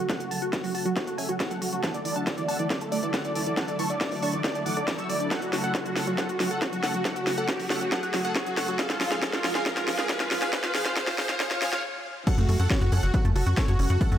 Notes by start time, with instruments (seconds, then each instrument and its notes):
Already playing: analog synth pad C#3 F#3 A3 F#4 A4, riser
0.09 synth arpeggio sound F#3, supersaw synth A4 F#5, kick, snare, closed hi-hat
0.20 supersaw synth F#4, synth arpeggio sound F#5, closed hi-hat
0.31 synth arpeggio sound F#3, supersaw synth F#5 A5, open hi-hat
0.42 supersaw synth F#4, synth arpeggio sound F#4, closed hi-hat
0.53 supersaw synth F#4, synth arpeggio sound C#5, kick, snare, closed hi-hat
0.64 synth arpeggio sound F#3, supersaw synth F#4, open hi-hat
0.74 synth arpeggio sound F#4, supersaw synth F#5 A5, open hi-hat
0.85 synth arpeggio sound F#3, supersaw synth F#4, closed hi-hat
0.96 supersaw synth F#4, synth arpeggio sound C#5, kick, snare, closed hi-hat
1.07 supersaw synth F#4, synth arpeggio sound F#5, closed hi-hat
1.18 synth arpeggio sound C#4, supersaw synth E5 G#5, open hi-hat
1.29 synth arpeggio sound F#3, supersaw synth F#4, closed hi-hat
1.40 supersaw synth F#4, synth arpeggio sound C#5, kick, snare, closed hi-hat
1.50 synth arpeggio sound F#3, supersaw synth A4 F#5, closed hi-hat
1.62 synth arpeggio sound F#3, supersaw synth F#4, open hi-hat
1.73 synth arpeggio sound F#3, supersaw synth F#4, closed hi-hat
1.83 analog synth pad D3 E4, synth arpeggio sound E3, supersaw synth F#5 A5, kick, snare, closed hi-hat
1.94 synth arpeggio sound A4, supersaw synth D5, closed hi-hat
2.05 synth arpeggio sound E3, supersaw synth D5, open hi-hat
2.16 synth arpeggio sound D4, supersaw synth F#5 A5, closed hi-hat
2.27 synth arpeggio sound F#4, supersaw synth D5, kick, snare, closed hi-hat
2.37 synth arpeggio sound E3, supersaw synth D5, closed hi-hat
2.48 synth arpeggio sound D4, supersaw synth F#5 A5, open hi-hat
2.59 synth arpeggio sound E3, supersaw synth D5, closed hi-hat
2.70 synth arpeggio sound F#4, supersaw synth D5, kick, snare, closed hi-hat
2.81 synth arpeggio sound A4, closed hi-hat
2.92 synth arpeggio sound A3, supersaw synth D5, open hi-hat
3.03 synth arpeggio sound E3, supersaw synth D5, closed hi-hat
3.14 synth arpeggio sound F#4, supersaw synth D5 F#5, kick, snare, closed hi-hat
3.25 synth arpeggio sound E3, supersaw synth D5, closed hi-hat
3.35 synth arpeggio sound E3, supersaw synth D5, open hi-hat
3.46 synth arpeggio sound E3, supersaw synth D5, closed hi-hat
3.57 synth arpeggio sound E3, supersaw synth F#5 A5, kick, snare, closed hi-hat
3.68 synth arpeggio sound A4, supersaw synth D5, closed hi-hat
3.79 synth arpeggio sound E3, supersaw synth A5 C#6, open hi-hat
3.90 synth arpeggio sound D4, supersaw synth D5, closed hi-hat
4.01 synth arpeggio sound F#4, supersaw synth D5, kick, snare, closed hi-hat
4.12 synth arpeggio sound E3, supersaw synth D5, open hi-hat
4.22 synth arpeggio sound D4, supersaw synth A5 C#6, open hi-hat
4.33 synth arpeggio sound E3, supersaw synth D5, closed hi-hat
4.44 synth arpeggio sound F#4, supersaw synth D5, kick, snare, closed hi-hat
4.55 synth arpeggio sound A4, supersaw synth D5, closed hi-hat
4.66 synth arpeggio sound E3, supersaw synth F#5 D6, open hi-hat
4.77 synth arpeggio sound A4, supersaw synth D5, closed hi-hat
4.88 synth arpeggio sound E3, supersaw synth D5, kick, snare, closed hi-hat
4.98 synth arpeggio sound F#3, supersaw synth C#6 E6, closed hi-hat
5.09 synth arpeggio sound F#3, supersaw synth D5, open hi-hat
5.20 synth arpeggio sound D4, supersaw synth D5, closed hi-hat
5.31 analog synth pad C#3 F#4, synth arpeggio sound F#3, supersaw synth A4 F#5, kick, snare, closed hi-hat
5.42 supersaw synth F#4, synth arpeggio sound F#5, closed hi-hat
5.53 synth arpeggio sound F#3, supersaw synth F#4, snare, open hi-hat
5.64 synth arpeggio sound F#4, supersaw synth A4 F#5, closed hi-hat
5.75 supersaw synth F#4, synth arpeggio sound C#5, kick, snare, closed hi-hat
5.85 synth arpeggio sound F#3, supersaw synth F#4, closed hi-hat
5.96 synth arpeggio sound F#4, supersaw synth A4 F#5, snare, open hi-hat
6.07 synth arpeggio sound F#3, supersaw synth F#4, closed hi-hat
6.18 synth arpeggio sound F#3, supersaw synth A4 F#5, kick, snare, closed hi-hat
6.29 supersaw synth F#4, synth arpeggio sound F#5, closed hi-hat
6.40 synth arpeggio sound F#3, supersaw synth F#4, snare, open hi-hat
6.51 synth arpeggio sound F#4, supersaw synth A4 F#5, closed hi-hat
6.62 supersaw synth F#4, synth arpeggio sound C#5, kick, snare, closed hi-hat
6.73 synth arpeggio sound F#3, supersaw synth F#4, closed hi-hat
6.83 synth arpeggio sound F#4, supersaw synth A4 F#5, snare, open hi-hat
6.94 synth arpeggio sound F#3, supersaw synth F#4, closed hi-hat
7.05 synth arpeggio sound F#3, supersaw synth A4 F#5, kick, snare, closed hi-hat
7.16 supersaw synth F#4, synth arpeggio sound F#5, closed hi-hat
7.27 synth arpeggio sound F#3, supersaw synth F#4, snare, open hi-hat
7.38 synth arpeggio sound F#4, supersaw synth A4 F#5, closed hi-hat
7.48 supersaw synth F#4, synth arpeggio sound C#5, kick, snare, closed hi-hat
7.59 synth arpeggio sound F#3, supersaw synth F#4, open hi-hat
7.70 synth arpeggio sound F#4, supersaw synth A4 F#5, snare, open hi-hat
7.81 synth arpeggio sound F#3, supersaw synth F#4, closed hi-hat
7.92 synth arpeggio sound F#3, supersaw synth A4 F#5, kick, snare, closed hi-hat
8.03 supersaw synth F#4, synth arpeggio sound F#5, closed hi-hat
8.14 synth arpeggio sound F#3, supersaw synth F#4, snare, open hi-hat
8.25 synth arpeggio sound F#4, supersaw synth A4 F#5, closed hi-hat
8.35 supersaw synth F#4, synth arpeggio sound C#5, kick, snare, closed hi-hat
8.46 synth arpeggio sound F#3, supersaw synth F#4, closed hi-hat
8.57 synth arpeggio sound F#4, supersaw synth A4 F#5, snare, open hi-hat
8.68 synth arpeggio sound F#3, supersaw synth F#4, closed hi-hat
8.79 analog synth pad F3 G#3 F4 G#4, synth arpeggio sound F3, supersaw synth G#4 F5, kick, snare, closed hi-hat
8.90 supersaw synth F4, synth arpeggio sound F5, snare, closed hi-hat
9.01 synth arpeggio sound F3, supersaw synth F4, snare, open hi-hat
9.12 synth arpeggio sound F4, supersaw synth G#4 F5, snare, closed hi-hat
9.22 synth arpeggio sound F3, supersaw synth G#4 F5, kick, snare, closed hi-hat
9.33 supersaw synth F4, synth arpeggio sound F5, snare, closed hi-hat
9.44 synth arpeggio sound F3, supersaw synth F4, snare, open hi-hat
9.55 synth arpeggio sound F4, supersaw synth G#4 F5, snare, closed hi-hat
9.66 synth arpeggio sound F3, supersaw synth G#4 F5, kick, snare, closed hi-hat
9.77 supersaw synth F4, synth arpeggio sound F5, snare, closed hi-hat
9.88 synth arpeggio sound F3, supersaw synth F4, snare, open hi-hat
9.98 synth arpeggio sound F4, supersaw synth G#4 F5, snare, closed hi-hat
10.09 synth arpeggio sound F3, supersaw synth G#4 F5, kick, snare, closed hi-hat
10.20 supersaw synth F4, synth arpeggio sound F5, snare, closed hi-hat
10.31 synth arpeggio sound F3, supersaw synth F4, snare, open hi-hat
10.42 synth arpeggio sound F4, supersaw synth G#4 F5, snare, closed hi-hat
10.53 synth arpeggio sound F3, supersaw synth G#4 F5, kick, snare, closed hi-hat
10.64 supersaw synth F4, synth arpeggio sound F5, snare, closed hi-hat
10.74 synth arpeggio sound F3, supersaw synth G#4 F5, snare, open hi-hat
10.86 supersaw synth F4, synth arpeggio sound F5, snare, closed hi-hat
10.96 synth arpeggio sound F3, supersaw synth G#4 F5, kick, snare, closed hi-hat
11.07 supersaw synth F4, synth arpeggio sound F5, snare, open hi-hat
11.18 synth arpeggio sound F3, supersaw synth G#4 F5, kick, snare, open hi-hat
11.29 supersaw synth F4, synth arpeggio sound F5, snare, closed hi-hat
11.40 synth arpeggio sound F3, supersaw synth G#4 F5, kick, snare, closed hi-hat
11.51 supersaw synth F4, synth arpeggio sound F5, snare, closed hi-hat
11.62 synth arpeggio sound F3, supersaw synth G#4 F5, snare, open hi-hat
11.73 supersaw synth F4, synth arpeggio sound F5, snare, closed hi-hat
12.27 analog synth pad C#3 F#3 A3 F#4 A4, synth arpeggio sound F#3, supersaw synth A4 F#5, kick, closed hi-hat, crash
12.38 analog synth bass F#2, synth arpeggio sound A3, supersaw synth F#4, closed hi-hat
12.49 analog synth bass F#2, synth arpeggio sound A3, supersaw synth F#4, open hi-hat
12.59 analog synth bass F#2, synth arpeggio sound F#4, supersaw synth A4 F#5, closed hi-hat
12.70 synth arpeggio sound C#4, supersaw synth F#4, kick, snare, closed hi-hat
12.81 analog synth bass F#2, supersaw synth F#4, synth arpeggio sound F#4, closed hi-hat
12.92 analog synth bass F#2, synth arpeggio sound C#4, supersaw synth A4 F#5, open hi-hat
13.03 analog synth bass F#1, supersaw synth F#4, synth arpeggio sound F#5, closed hi-hat
13.14 synth arpeggio sound F#3, supersaw synth F#4, kick, closed hi-hat
13.25 analog synth bass F#2, synth arpeggio sound A3, closed hi-hat
13.36 analog synth bass F#1, supersaw synth F#4, synth arpeggio sound A4, open hi-hat
13.46 analog synth bass F#2, supersaw synth F#4, synth arpeggio sound F#4, closed hi-hat
13.57 synth arpeggio sound C#4, supersaw synth A4 C#5, kick, snare, closed hi-hat
13.68 analog synth bass F#2, supersaw synth F#4, synth arpeggio sound C#5, closed hi-hat
13.79 analog synth bass F#1, synth arpeggio sound C#4, supersaw synth F#4, open hi-hat
13.90 analog synth bass F#2, supersaw synth F#4, synth arpeggio sound F#5, closed hi-hat
14.01 synth arpeggio sound F#3, supersaw synth A4 F#5, kick, closed hi-hat
14.12 analog synth bass F#2, synth arpeggio sound A3, supersaw synth F#4, closed hi-hat